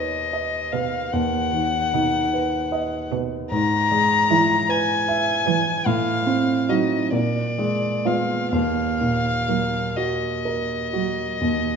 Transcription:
0.00 1.08 D#2 soft
0.00 1.53 D#3 soft
0.00 0.18 D#4 soft
0.00 0.57 B4 soft
0.00 0.74 D#5 medium
0.33 0.97 D#5 soft
0.73 1.03 B2 soft
0.73 1.37 B4 soft
0.73 1.14 F5 medium
1.13 3.48 D#2 soft
1.13 3.11 F#5 medium
1.53 2.17 D#3 soft
1.93 2.23 B2 soft
1.93 2.56 D#4 soft
2.34 2.96 B4 soft
2.72 3.36 D#5 soft
3.12 3.41 B2 soft
3.12 3.52 B4 soft
3.51 5.82 G#2 medium
3.51 4.71 A#5 medium
3.92 4.55 G#3 soft
4.31 4.60 E3 medium
4.31 4.93 E4 soft
4.69 5.31 B4 soft
4.69 5.88 G#5 medium
5.08 5.70 E5 soft
5.46 5.76 E3 medium
5.46 5.86 B4 soft
5.86 7.10 A2 medium
5.86 6.71 F5 medium
6.27 6.96 C4 soft
6.69 7.03 F#3 soft
6.69 7.10 D#4 soft
6.69 7.10 F#4 soft
6.69 7.13 D#5 medium
7.12 8.48 A#2 soft
7.12 8.08 D5 medium
7.58 8.34 G#3 soft
8.05 8.40 G#3 soft
8.05 8.49 B3 soft
8.05 8.49 F4 soft
8.05 8.52 F5 medium
8.52 11.37 D#2 soft
8.52 9.99 F5 medium
9.01 9.78 A#2 soft
9.48 9.85 F#3 soft
9.48 10.27 A#3 soft
9.97 10.75 F#4 soft
9.97 11.76 D#5 medium
10.45 11.22 A#4 soft
10.93 11.30 F#3 soft
10.93 11.69 F#4 soft
11.41 11.76 D#2 soft

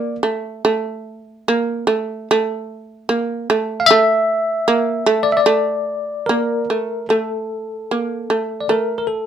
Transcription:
0.00 0.22 A#3 medium
0.00 0.15 D5 medium
0.23 0.64 A3 medium
0.65 1.47 A3 medium
1.48 1.87 A#3 medium
1.87 2.28 A3 medium
2.31 3.09 A3 medium
3.09 3.49 A#3 medium
3.50 3.89 A3 medium
3.80 3.87 F5 medium
3.86 5.29 E5 loud
3.91 4.67 A3 medium
4.68 5.06 A#3 medium
5.06 5.45 A3 medium
5.23 5.31 D5 medium
5.32 5.39 E5 medium
5.37 6.64 D5 medium
5.46 6.27 A3 medium
6.26 6.70 A#3 medium
6.26 7.05 A#4 medium
6.70 7.09 A3 medium
7.09 7.90 A3 medium
7.09 8.66 A4 medium
7.91 8.30 A#3 medium
8.30 8.68 A3 medium
8.61 8.68 D5 medium
8.69 9.27 A3 medium
8.69 8.97 A#4 medium
8.98 9.06 A#4 medium
9.07 9.27 A4 medium

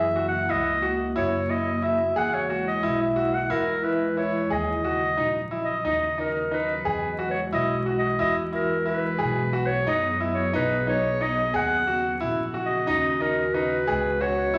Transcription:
0.00 0.46 F#2 medium
0.00 2.14 C#3 medium
0.00 2.14 A#3 medium
0.00 2.14 F#4 medium
0.00 0.24 E5 loud
0.16 0.38 F#4 medium
0.28 0.52 F#5 loud
0.49 1.12 C#2 medium
0.49 0.71 E4 medium
0.49 0.94 D#5 medium
0.82 1.04 F#4 medium
1.16 2.13 F#2 medium
1.16 1.38 E4 medium
1.16 1.52 C#5 medium
1.50 1.71 E4 medium
1.50 1.85 D#5 medium
1.82 2.04 E4 medium
1.82 2.17 E5 medium
2.16 2.79 E2 medium
2.16 4.48 E3 medium
2.16 4.48 G#3 medium
2.16 4.48 E4 medium
2.16 2.38 G#4 medium
2.16 2.35 F#5 loud
2.34 2.67 C#5 medium
2.50 2.71 F#4 medium
2.67 3.03 D#5 medium
2.83 3.47 B1 medium
2.83 3.05 E4 medium
3.01 3.36 E5 medium
3.16 3.38 F#4 medium
3.34 3.52 F#5 medium
3.50 4.47 E2 medium
3.50 3.72 E4 medium
3.50 3.86 A#4 medium
3.84 4.05 E4 medium
3.84 4.17 B4 medium
4.17 4.39 E4 medium
4.17 4.49 C#5 medium
4.50 5.14 D#2 loud
4.50 6.84 C#3 medium
4.50 6.83 F#3 medium
4.50 4.72 G#4 medium
4.50 6.83 D#5 medium
4.50 5.59 D#5 medium
4.84 5.06 F#4 medium
5.17 5.81 A#1 medium
5.17 5.39 D#4 medium
5.51 5.73 E4 medium
5.64 5.84 D#5 medium
5.85 6.81 D#2 medium
5.85 6.06 D#4 medium
5.85 6.21 D#5 medium
6.18 6.40 D#4 medium
6.18 6.53 A#4 medium
6.51 6.73 D#4 medium
6.51 7.27 B4 medium
6.85 7.48 E2 loud
6.85 9.18 E3 medium
6.85 9.18 G#3 medium
6.85 9.18 F#4 medium
6.85 7.07 G#4 medium
7.19 7.40 F#4 medium
7.31 7.41 C#5 medium
7.52 8.15 B1 medium
7.52 7.74 E4 medium
7.52 7.84 D#5 medium
7.86 8.08 F#4 medium
7.98 8.19 D#5 medium
8.19 9.16 E2 medium
8.19 8.41 E4 medium
8.19 8.36 D#5 loud
8.53 8.74 E4 medium
8.53 8.85 A#4 medium
8.86 9.08 E4 medium
8.86 9.68 B4 loud
9.18 9.83 B1 loud
9.18 11.52 F#3 medium
9.18 11.52 B3 medium
9.18 9.41 G#4 medium
9.18 11.52 G#4 medium
9.53 9.75 F#4 medium
9.66 9.90 C#5 loud
9.86 10.49 F#2 medium
9.86 10.08 D#4 medium
9.86 10.21 D#5 loud
10.20 10.42 E4 medium
10.33 10.53 C#5 medium
10.53 11.50 B1 loud
10.53 10.75 D#4 medium
10.53 10.85 B4 loud
10.87 11.09 D#4 medium
10.87 11.24 C#5 loud
11.21 11.42 D#4 medium
11.21 11.55 D#5 loud
11.54 12.17 D#2 loud
11.54 13.85 C#3 medium
11.54 13.85 C#4 medium
11.54 14.58 F#4 medium
11.54 11.75 G#4 loud
11.54 12.24 F#5 loud
11.87 12.09 F#4 medium
12.21 12.84 A#1 loud
12.21 12.42 E4 loud
12.54 12.76 F#4 medium
12.66 12.86 D#5 medium
12.87 13.84 D#2 loud
12.87 13.09 D#4 medium
12.87 13.23 D#5 loud
13.20 13.42 D#4 medium
13.20 13.56 A#4 medium
13.54 13.76 D#4 medium
13.54 14.23 B4 medium
13.87 14.50 C#2 loud
13.87 14.58 E3 medium
13.87 14.58 B3 medium
13.87 14.09 G#4 medium
13.87 14.58 D#5 medium
14.21 14.42 F#4 medium
14.21 14.58 C#5 loud
14.54 14.58 G#1 medium
14.54 14.58 E4 medium

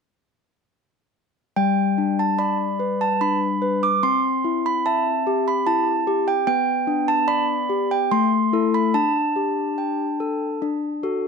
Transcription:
1.56 3.99 G3 soft
1.56 2.16 G5 medium
1.98 2.64 D4 soft
2.19 2.39 A5 medium
2.39 3.04 D5 soft
2.39 2.98 B5 medium
2.79 3.45 B4 soft
3.01 3.21 A5 medium
3.21 3.86 D4 soft
3.21 3.80 B5 medium
3.62 4.03 B4 soft
3.83 4.03 D6 medium
4.03 6.43 C4 soft
4.03 4.62 C6 medium
4.44 5.10 E4 soft
4.66 4.86 B5 medium
4.86 5.51 E5 soft
4.86 5.44 A5 medium
5.27 5.91 G4 soft
5.48 5.67 B5 medium
5.67 6.31 E4 soft
5.67 6.24 A5 medium
6.07 6.47 G4 soft
6.28 6.46 G5 medium
6.47 8.08 B3 medium
6.47 7.05 G5 medium
6.87 7.53 D4 soft
7.08 7.28 A5 medium
7.28 7.95 D5 soft
7.28 7.88 B5 medium
7.69 8.12 G4 soft
7.91 8.12 G5 medium
8.12 8.92 A3 medium
8.12 8.72 C6 medium
8.53 8.91 E4 soft
8.53 8.91 A4 soft
8.74 8.95 B5 medium
8.94 10.58 D4 medium
8.94 10.99 A5 medium
9.36 10.03 G4 soft
9.78 10.45 G5 soft
10.20 10.62 A4 soft
10.62 11.28 D4 soft
11.03 11.28 F#4 soft
11.03 11.28 A4 soft

